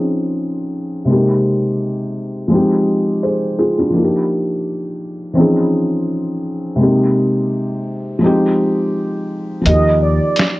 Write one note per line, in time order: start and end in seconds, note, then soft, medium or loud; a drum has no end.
0.00 1.04 F3 medium
0.00 1.04 C4 medium
0.00 1.05 C#4 medium
0.00 1.06 D#4 medium
0.00 1.07 G#4 medium
1.05 2.46 C3 medium
1.05 2.47 G#3 soft
1.05 2.48 A#3 medium
1.09 2.49 C4 medium
1.09 2.49 D#4 medium
1.09 2.50 G4 medium
2.48 3.89 F3 medium
2.48 3.90 G#3 medium
2.48 3.91 C4 medium
2.53 3.22 D#4 medium
2.53 3.23 G4 medium
3.23 3.57 G#4 soft
3.23 3.56 C5 medium
3.59 3.77 F4 medium
3.59 3.77 G#4 medium
3.79 3.92 D4 medium
3.79 3.96 F4 medium
3.90 5.32 F3 medium
3.90 5.33 A#3 medium
3.90 5.34 D4 medium
3.96 5.35 D#4 soft
3.96 4.03 F4 soft
4.04 5.39 G4 medium
5.33 5.42 E3 medium
5.33 6.76 C4 medium
5.33 6.77 C#4 medium
5.39 6.78 F3 medium
5.39 6.77 D#4 medium
5.39 6.78 G#4 medium
6.76 8.17 C3 medium
6.76 8.18 G#3 medium
6.76 8.19 A#3 medium
6.80 8.20 C4 soft
6.80 8.20 D#4 medium
6.80 8.21 G4 medium
8.19 9.60 F3 medium
8.19 9.61 G#3 medium
8.19 9.62 C4 medium
8.24 9.63 D#4 medium
8.24 9.64 G4 medium
9.62 10.60 F3 medium
9.62 10.60 A#3 medium
9.66 10.18 D#2 loud
9.66 10.60 D#4 soft
9.66 10.60 G4 medium
9.66 9.98 D#5 medium
9.66 closed hi-hat medium
10.02 10.60 D5 medium
10.36 snare loud
10.36 closed hi-hat medium